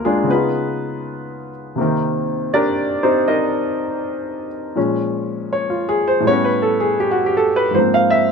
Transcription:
grand piano
Already playing: D2 C3 G#3 A#3 F4 A#4
0.05 G#3 D4 F4 G#4
0.24 C#3 B3
0.30 B3 D#4 F4 G#4 B4
0.35 F4
1.76 C3 A#3 C4
1.81 D#3
2.54 D4 G4 A#4 D5
3.03 C4 D#4 G4 C5
3.28 D#4 A#4 C5 D#5
4.75 A#2 F3 G#3 C#4
5.53 C#5
5.70 F4
5.89 G#4
6.08 C5
6.20 A2 G3
6.27 B3 C#5
6.31 C#4
6.44 B4
6.62 A4
6.80 G#4
7.00 G4
7.11 F#4
7.26 G4
7.37 A4
7.56 B4
7.71 G#2 F3 C5
7.79 A#3 C4
7.94 F5
8.10 E5

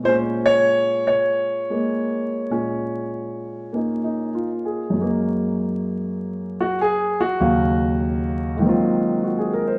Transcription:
grand piano
0.03 A#2 G#3 C5
0.08 C#4
0.46 C#5
1.07 C#5
1.70 G#3 A#3
2.50 A#2 G#3 C#4
3.73 A#3 C#4 D#4
4.04 D#4
4.35 F4
4.65 G#4
4.90 F#2 F#3
4.98 G#3 A#3
6.61 F#4
6.81 G#4
7.21 F#4
7.40 D#2 C#3 F#3 F5
8.57 G#2 D#3
8.62 F#3 A#3 C4
8.68 F4
9.24 F#4
9.38 G#4
9.53 A#4
9.67 C5

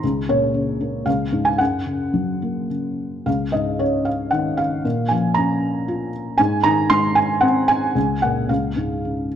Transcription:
felt piano
0.03 C#2
0.29 A#2 C#5
0.54 C#3
0.80 A#3
1.06 C#2 F5
1.32 G#2
1.45 G#5
1.58 F#2 F#5
1.86 C#3
2.14 F#3
2.42 A#3
2.70 C#3
3.26 C#2 F5
3.52 G#2 D#5
3.79 C#3 C#5
4.05 F5
4.31 D#3 F#5
4.57 F5
4.85 A#2
5.08 F3 G#5
5.34 C#4 A#5
5.88 F4
6.38 G#2 G#5
6.63 D#3 A#5
6.90 G#3 C6
7.15 G#5
7.41 C4 F#5
7.68 G#5
7.95 C#2
8.22 A#2 F#5
8.49 C#2 F5
8.76 G#2
9.05 C#3

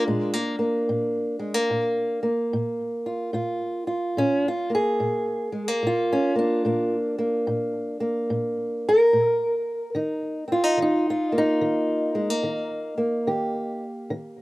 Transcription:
steel-string acoustic guitar
Already playing: D4 F4
0.08 A#2 G#3
0.34 A#3
0.59 A#3
0.89 A#2
1.39 G#3
1.54 A#3
1.70 A#2
2.23 A#3
2.53 A#2
3.06 F4
3.33 A#2 F4
3.87 F4
4.17 A#2 C#4
4.48 F4
4.70 A#3
4.75 G#4
5.00 A#2
5.52 G#3
5.68 A#3
5.83 A#2
5.87 F4
6.13 C#4
6.35 A#3 D4
6.65 A#2 A#3
7.18 A#3
7.47 A#2
8.00 A#3
8.30 A#2
8.89 A#4
9.13 A#2
9.95 D#3 D#4
10.48 C4
10.52 F4
10.64 D#4
10.77 D#3
10.82 D#4
11.10 F4
11.32 A#3
11.38 D#4
11.61 D#3
12.15 G#3
12.30 A#3
12.43 D#3
12.98 A#3
13.27 D#3 G4
14.10 D#3

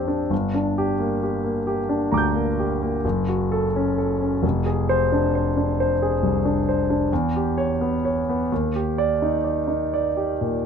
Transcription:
grand piano
Already playing: A#1 C4 D4 G4 C6 D6 G6
0.08 D4
0.30 G1
0.54 D4
0.78 G4
0.99 A#3
1.23 G4
1.44 A#3
1.67 G4
1.89 D4
2.12 D2 A#5 D6
2.18 G6
2.35 A#3
2.59 G4
2.82 A#3
3.05 F#1
3.29 F#4
3.52 A4
3.76 C#4
3.98 A4
4.21 C#4
4.43 F1
4.66 G#4
4.89 C5
5.12 D4
5.35 C5
5.57 D4
5.80 C5
6.02 G#4
6.22 C2
6.45 D4
6.69 C5
6.90 D4
7.12 E2
7.36 G4
7.58 C#5
7.81 B3
8.05 C#5
8.29 B3
8.52 D#2
8.76 G4
8.98 D5
9.22 D#4
9.44 D5
9.68 D#4
9.94 D5
10.17 G4
10.41 A#2

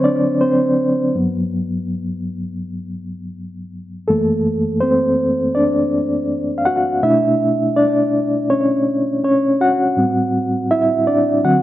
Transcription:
reed electric piano
Already playing: D3 F#3 C4 C5 C#5
0.04 D4 D5
0.41 C4 C5
1.15 G2 F#3 B3
4.08 F#2 E3 A3 A#3 A4
4.80 C4 C5
5.55 D4 D5
6.58 F5
6.65 F#4 F#5
7.03 B2 A3 D4 E4 E5
7.76 D4 D5
8.50 C#4 C#5
9.24 C#4 C#5
9.61 F#4 F#5
9.97 A2 G3 C4
10.71 E4 E5
11.07 D4 D5
11.44 D3 F#3 C4 F#4 F#5

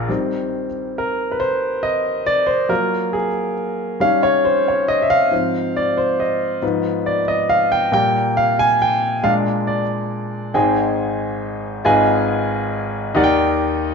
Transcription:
grand piano
Already playing: A#1 A#2 F4 G#4 A#4 D5 F5 G#5 A#5
0.08 D#3 G3 C4
0.98 A#4
1.32 B4
1.40 C5
1.83 D#5
2.26 D5
2.47 C5
2.69 F#3 A#3 F4 A#4
3.13 G#4
4.00 D#3 G3 C#4 F5
4.23 C#5
4.45 C5
4.68 C#5
4.88 D#5
5.02 E5
5.10 F5
5.31 G#2 F3 C4
5.77 D5
5.97 C5
6.20 D#5
6.62 G#2 F3 B3
7.06 D5
7.28 D#5
7.49 F5
7.72 G5
7.92 A#2 G3 A#3 G5
8.37 F5
8.59 G#5
8.82 G5
9.23 A#2 G#3 D4 F5
9.67 D5
10.54 G#1 G#2 G#4 C5 D#5 G5 G#5
11.85 G#1 G#2 F4 G#4 B4 D#5 G#5
13.15 D#2 D#3 D#4 G4 A#4 D5 F#5
13.24 G5

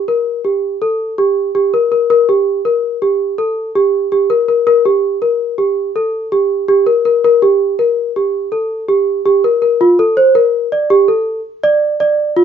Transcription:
celesta
0.08 A#4
0.44 G4
0.82 A4
1.18 G4
1.55 G4
1.74 A#4
1.92 A#4
2.10 A#4
2.29 G4
2.65 A#4
3.02 G4
3.38 A4
3.75 G4
4.12 G4
4.30 A#4
4.48 A#4
4.67 A#4
4.85 G4
5.22 A#4
5.58 G4
5.96 A4
6.32 G4
6.68 G4
6.86 A#4
7.05 A#4
7.24 A#4
7.42 G4
7.79 A#4
8.16 G4
8.52 A4
8.88 G4
9.26 G4
9.44 A#4
9.62 A#4
9.81 F4
9.99 A4
10.17 C5
10.35 A#4
10.72 D5
10.90 G4
11.08 A4
11.64 D5
12.00 D5
12.37 F4

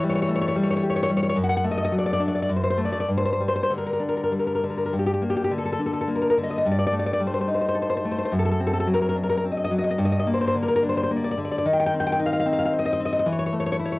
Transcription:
nylon-string guitar
Already playing: E3
0.03 G3
0.09 C#5
0.15 C#5
0.22 C#5
0.29 A3
0.35 C#5
0.41 C#5
0.48 C#5
0.55 G3
0.63 C#5
0.70 C#5
0.76 C#5
0.83 G4
0.90 C#5
0.96 C#5
1.03 C#5
1.10 G3
1.17 C#5
1.23 C#5
1.29 C#5
1.36 F#2
1.44 F#5
1.49 F#5
1.57 F#5
1.64 A3
1.71 D#5
1.78 D#5
1.85 D#5
1.92 F#3
1.99 D5
2.06 D5
2.13 D5
2.20 D4
2.28 D5
2.35 D5
2.42 D5
2.49 F#2
2.56 C5
2.64 C5
2.70 C5
2.78 A3
2.85 D5
2.92 D5
3.00 D5
3.08 G2
3.17 C5
3.25 C5
3.33 C5
3.40 G3
3.48 C5
3.56 C5
3.63 C5
3.70 D3
3.78 A#4
3.86 A#4
3.93 A#4
4.00 D4
4.09 A#4
4.17 A#4
4.23 A#4
4.32 G3
4.39 A#4
4.47 A#4
4.55 A#4
4.63 D3
4.70 A#4
4.77 A#4
4.85 A#4
4.93 G2
4.99 G4
5.06 G4
5.13 G4
5.21 A#3
5.30 G4
5.37 G4
5.44 G4
5.51 D3
5.58 A4
5.65 A4
5.72 A4
5.79 D4
5.86 A4
5.93 A4
6.01 A4
6.08 A#3
6.15 A#4
6.22 A#4
6.30 A#4
6.37 D3
6.43 D#5
6.50 D#5
6.58 D#5
6.65 G2
6.71 D5
6.79 D5
6.87 D5
6.92 A3
6.99 D5
7.06 D5
7.13 D5
7.20 G3
7.27 C5
7.34 C5
7.41 C5
7.47 D#4
7.54 C5
7.61 C5
7.68 C5
7.75 A4
7.82 C5
7.90 C5
7.97 C5
8.05 A3
8.11 C5
8.18 C5
8.25 C5
8.32 F#2
8.39 A4
8.45 A4
8.51 A4
8.60 C4
8.67 A4
8.73 A4
8.80 A4
8.87 F#3
8.94 A#4
9.02 A#4
9.09 A#4
9.16 D4
9.24 A#4
9.30 A#4
9.37 A#4
9.44 C4
9.52 D#5
9.57 D#5
9.64 D#5
9.71 F#3
9.78 D#5
9.84 D#5
9.91 D#5
9.98 G2
10.05 D#5
10.12 D#5
10.19 D#5
10.27 A#3
10.34 C5
10.41 C5
10.47 C5
10.55 D3
10.63 A#4
10.68 A#4
10.76 A#4
10.83 D4
10.89 C5
10.97 C5
11.03 C5
11.11 A#3
11.17 D5
11.24 D5
11.31 D5
11.38 D3
11.45 D5
11.52 D5
11.58 D5
11.66 D#3
11.73 G5
11.80 G5
11.86 G5
11.94 C4
12.00 G5
12.07 G5
12.12 G5
12.19 D#4
12.26 F5
12.33 F5
12.40 F5
12.45 C4
12.53 F5
12.59 F5
12.65 F5
12.73 C5
12.79 D#5
12.85 D#5
12.93 D#5
13.00 C4
13.05 D#5
13.13 D#5
13.19 D#5
13.26 E3
13.32 C#5
13.39 C#5
13.46 C#5
13.53 A3
13.60 C#5
13.66 C#5
13.72 C#5
13.79 E4
13.85 C#5
13.92 C#5

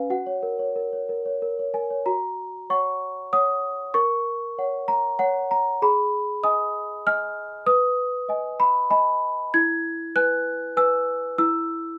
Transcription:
celesta
Already playing: C#4 B4 F5 G#5
0.10 F#4 F#5
0.26 C#5
0.43 A#4
0.59 C#5
0.76 A#4
0.93 C#5
1.09 A#4
1.26 C#5
1.42 A#4
1.59 C#5
1.74 A#4 G#5
1.90 C#5
2.06 F#4 A#5
2.70 C#5 F#5 C#6
3.33 C#5 F#5 D#6
3.94 A#4 C#6
4.58 C#5 F#5
4.88 A#5
5.19 C#5 F#5
5.51 A#5
5.82 G#4 B5
6.43 D#5 G#5 D#6
7.07 D#5 G#5 F6
7.66 B4 D#6
8.29 D#5 G#5
8.60 B5
8.90 D#5 G#5 B5
9.54 E4 G#6
10.16 B4 G#5 F#6
10.77 B4 G#5 E6
11.38 E4 E6

